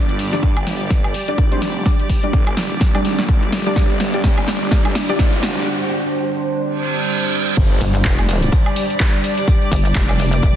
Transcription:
Already playing: G1 G3 D4 G4 D5 D6, riser
0.09 closed hi-hat
0.19 open hi-hat
0.33 G3 D4 D5, snare, closed hi-hat
0.43 G2, kick, closed hi-hat
0.57 G1, closed hi-hat, high woodblock
0.67 snare, open hi-hat
0.81 G1
0.91 kick, snare, closed hi-hat
1.04 closed hi-hat, high woodblock
1.14 open hi-hat
1.28 G3 D4 D5, closed hi-hat
1.38 G#1, kick, closed hi-hat
1.52 G3 D4 C5, closed hi-hat
1.62 F1, snare, open hi-hat
1.86 G3 D4 D5, kick, snare, closed hi-hat
1.99 closed hi-hat
2.10 kick, open hi-hat
2.23 G3 D4 D5, closed hi-hat
2.33 G1, kick, closed hi-hat
2.47 closed hi-hat, high woodblock
2.57 snare, open hi-hat
2.81 F1, kick, snare, closed hi-hat
2.95 G3 D4 D5, closed hi-hat, high woodblock
3.05 G#1, open hi-hat
3.19 A#1, snare, closed hi-hat
3.29 G#1, kick, closed hi-hat
3.42 closed hi-hat
3.52 F1, snare, open hi-hat
3.66 G3 D4 D5
3.76 G1 G3 D4 C5 D5, kick, snare, closed hi-hat
3.90 closed hi-hat
4.00 snare, open hi-hat
4.14 G3 D4 D5, closed hi-hat
4.24 G2, kick, snare, closed hi-hat
4.38 G1, closed hi-hat, high woodblock
4.48 snare, open hi-hat
4.62 G1
4.71 G3 D4 D5, kick, snare, closed hi-hat
4.85 closed hi-hat, high woodblock
4.95 snare, open hi-hat
5.09 G3 D4 D5, closed hi-hat
5.19 G#1, kick, snare, closed hi-hat
5.33 closed hi-hat
5.43 F1, snare, open hi-hat
6.62 reverse cymbal
7.57 G1 G3 D4 D5, kick, closed hi-hat, crash, tambourine, downlifter
7.71 tambourine
7.81 G1, open hi-hat, tambourine
7.90 G4
7.95 closed hi-hat, tambourine
8.05 F1, kick, clap, closed hi-hat, tambourine
8.19 tambourine, high woodblock
8.27 D5, open hi-hat, tambourine
8.42 closed hi-hat, tambourine
8.52 kick, closed hi-hat, tambourine
8.66 tambourine, high woodblock
8.76 open hi-hat, tambourine
8.90 closed hi-hat, tambourine
9.00 kick, clap, closed hi-hat, tambourine
9.14 tambourine
9.24 open hi-hat, tambourine
9.34 D6
9.38 closed hi-hat, tambourine
9.48 kick, closed hi-hat, tambourine
9.62 tambourine
9.72 G1, kick, open hi-hat, tambourine
9.85 closed hi-hat, tambourine
9.95 F1, kick, clap, closed hi-hat, tambourine
10.09 tambourine, high woodblock
10.19 open hi-hat, tambourine
10.33 closed hi-hat, tambourine
10.43 F1, kick, closed hi-hat, tambourine

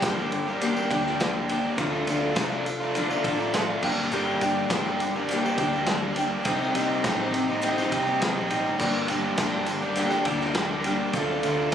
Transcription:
Already playing: A#4 D5 G5 D6
0.02 G1 G2 D3 G3 A#3 D4 G4, kick, snare, ride, tambourine
0.17 G3 A#3 D4 G4, tambourine
0.32 muted overdriven electric guitar stroke, ride
0.47 G3 A#3 D4 G4, tambourine
0.61 G2 D3 G3 A#3 D4 G4, ride, tambourine
0.75 G3 A#3 D4 G4, tambourine
0.90 D2 G3 A#3 D4 G4, kick, ride
1.04 G3 A#3 D4 G4, snare
1.19 G2 D3 G3 A#3 D4 G4, snare, ride, tambourine
1.33 G3 A#3 D4 G4
1.48 G3 A#3 D4 G4, ride
1.52 G3
1.76 D2 D3 F3 A3 D4 F4 A4 F5, kick, ride
2.05 D2 D3 A3 D4 F4 A4, ride, tambourine
2.34 C2 D3 F3 A3 D4 F4, kick, snare, ride, tambourine
2.39 A4
2.50 A3 D4 F4, tambourine
2.65 muted overdriven electric guitar stroke, ride, tambourine
2.80 A3 D4 F4, tambourine
2.95 D3 F3 D4 F4 A4, ride, tambourine
3.10 A3 D4 F4, tambourine
3.24 A1 D3 A3 D4 F4 A4, kick, ride
3.39 A3 D4 F4, tambourine
3.54 D3 A3 D4 F4, snare, ride, tambourine
3.68 A3 D4 F4
3.82 G1 G2 D3 G3 A#3 D4 G4 A#4 G5, kick, crash
4.12 G1 G2 D3 G3 A#3 D4 G4
4.41 G1 G3 A#3 D4 G4, ride, tambourine
4.70 G1 G2 D3 G3 A#3 D4 G4, kick, snare, ride, tambourine
4.85 G3 A#3 D4 G4, tambourine
5.00 muted overdriven electric guitar stroke, ride, tambourine
5.15 G3 A#3 D4 G4, tambourine
5.29 G2 D3 G3 A#3 D4, ride, tambourine
5.33 G4
5.44 G3 A#3 D4 G4, tambourine
5.57 D2 G3 A#3 D4 G4, kick, ride
5.63 G3
5.73 G3 A#3 D4 G4, tambourine
5.86 G2 D3 G3, snare, ride, tambourine
5.91 A#3 D4 G4
6.02 G3 A#3 D4 G4
6.16 G3 A#3 D4 G4, ride, tambourine
6.44 C2 C3 G3 C4 C5 D#5 D#6, kick, ride, tambourine
6.48 D#4 G4
6.63 tambourine
6.74 C2 G3 C4 D#4 G4, ride, tambourine
6.91 tambourine
7.04 A1 C3 G3 C4 D#4 G4, kick, snare, ride, tambourine
7.18 C4 D#4 G4
7.33 muted overdriven electric guitar stroke, ride, tambourine
7.47 C4 D#4 G4, tambourine
7.62 C3 G3 C4 D#4 G4, ride, tambourine
7.77 C4 D#4 G4, snare, tambourine
7.92 C2 G3 C4 D#4 G4, kick, ride, tambourine
8.06 C4 D#4 G4, tambourine
8.20 C2 C3 G3 C4 D#4 G4, snare, ride, tambourine
8.34 A#1 C4 D#4 G4, tambourine
8.49 A1 G3 C4 D#4 G4, ride, tambourine
8.66 G1, tambourine
8.79 G1 G2 D3 G3 A#3 D4 G4 A#4 D5 G5 D6, kick, crash
9.07 G1 G3 A#3 D4 G4, ride, tambourine
9.12 G3
9.37 G1 G2 D3 G3 A#3 D4 G4, kick, snare, ride, tambourine
9.53 G3 A#3 D4 G4
9.66 muted overdriven electric guitar stroke, ride, tambourine
9.82 G3 A#3 D4 G4, tambourine
9.95 G2 D3 G3 A#3 D4 G4, ride, tambourine
10.11 G3 A#3 D4 G4, snare, tambourine
10.25 D2 G3 A#3 D4 G4, kick, ride
10.30 G3
10.41 G3 A#3 D4 G4, snare, tambourine
10.54 G2 D3 G3 A#3 D4 G4, snare, ride, tambourine
10.71 G3 A#3 D4 G4
10.84 G3 A#3 D4 G4, ride, tambourine
11.13 D2 D3 F3 A3 D4 F4 A4 F5, kick, ride
11.43 D2 D3 A3 D4 F4, ride, tambourine
11.72 D3

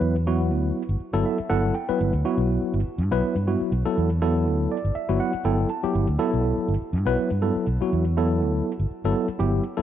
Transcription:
Already playing: F#3 B3 E4 B4
0.01 E2
0.27 F#3 B3 E4 F#4
0.51 D2
0.89 G1
1.00 muted fingered electric bass stroke
1.13 G1 F#3 B3 E4 A4
1.26 E5
1.40 muted fingered electric bass stroke
1.49 G1 F#3 B3 E4 A4 F#5
1.74 G5
1.89 F#3 B3 E4 B4, muted fingered electric bass stroke
2.01 G1
2.13 D2
2.25 F#3 B3 E4 F#4
2.38 B1
2.63 muted fingered electric bass stroke
2.74 G1
2.88 muted fingered electric bass stroke
2.98 G2
3.11 B1 F#3 B3 E4 B4
3.23 muted fingered electric bass stroke
3.36 G2
3.47 F#3 B3 E4 F#4
3.61 muted fingered electric bass stroke
3.72 B1
3.86 F#3 B3 E4 A4, muted fingered electric bass stroke
3.98 E2
4.22 F#3 B3 E4 A4
4.47 D2
4.72 D5
4.85 G1
4.95 E5, muted fingered electric bass stroke
5.09 G1 F#3 B3 E4 F#4
5.20 F#5
5.34 muted fingered electric bass stroke
5.45 G1 F#3 B3 E4 A4 G5
5.70 A5
5.83 F#3 B3 E4 G4, muted fingered electric bass stroke
5.95 G1
6.08 D2
6.19 F#3 B3 E4 A4
6.34 B1
6.58 muted fingered electric bass stroke
6.68 G1
6.82 muted fingered electric bass stroke
6.93 G2
7.06 B1 F#3 B3 E4 B4
7.18 muted fingered electric bass stroke
7.31 G2
7.42 F#3 B3 E4 A4
7.56 muted fingered electric bass stroke
7.67 B1
7.81 F#3 B3 E4 F#4, muted fingered electric bass stroke
7.93 E2
8.17 F#3 B3 E4 A4
8.42 D2
8.80 G1
8.91 muted fingered electric bass stroke
9.04 G1 F#3 B3 E4 A4
9.29 muted fingered electric bass stroke
9.39 G1 F#3 B3 E4 G4
9.77 F#3 B3 E4 A4, muted fingered electric bass stroke

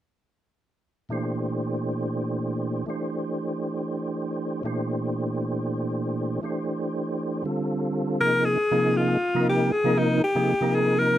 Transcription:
1.09 A#2 E3 A3 D4 G4 C5
2.86 E3 A3 D4 G4 C5
4.63 A#2 E3 A3 D4 G4 C5
6.42 E3 A3 D4 G4 C5
7.44 D3 G3 C4 F4 A4
8.20 C3 F3 A#3 D#4 G#4 A#4
8.45 G#4
8.71 C3 F3 A#3 D#4 G#4
8.97 F4
9.34 C3 F3 A#3 D#4 A#4
9.49 G4
9.73 G#4
9.84 C3 F3 A#3 D#4 A#4
9.98 D#4
10.24 G4
10.35 C3 F3 A#3 D#4 G#4
10.60 C3 F3 A#3 D#4 A#4
10.75 G#4
10.99 A#4

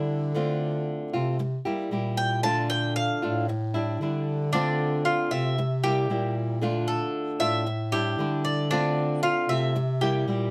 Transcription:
Already playing: D3 G3 D4 E4
0.34 D3 A3 C4 F4
1.13 C3 A3 C4 F4
1.39 muted nylon-string guitar stroke
1.65 G3 A#3 E4 G4
1.91 A#2 G3 A#3 E4 G4
2.17 G5
2.43 D3 A3 D4 F4 A5
2.70 G5
2.96 F5
3.22 A2 A3 D4 F4
3.48 muted nylon-string guitar stroke
3.74 G3 D4 E4
4.00 D3 G3 D4 E4
4.53 D3 A3 C4 D4 F4
5.05 F4
5.31 C3 A3 C4 F4 E5
5.58 muted nylon-string guitar stroke
5.84 G3 A#3 E4 G4
6.09 A#2 G3 A#3 E4 G4
6.61 D3 A3 D4 F4
6.88 A4
7.39 A2 A3 D4 F4 E5
7.66 muted nylon-string guitar stroke
7.92 G3 D4 E4 G4
8.18 D3 G3 D4 E4
8.45 D5
8.71 D3 A3 C4 D4 F4
9.23 F4
9.49 C3 A3 C4 F4 E5
9.75 muted nylon-string guitar stroke
10.01 G3 A#3 E4 G4
10.27 A#2 G3 A#3 E4 G4

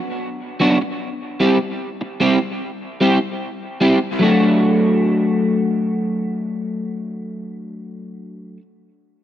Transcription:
0.60 F#3 B3 D4 F#4
0.82 muted clean electric guitar stroke
1.40 G3 C4 E4 G4
2.01 muted clean electric guitar stroke
2.20 G3 C4 E4 G4
3.01 G3 C4 E4 G4
3.81 G3 C4 E4 G4
4.19 F#3 A3 D4
4.24 F#4

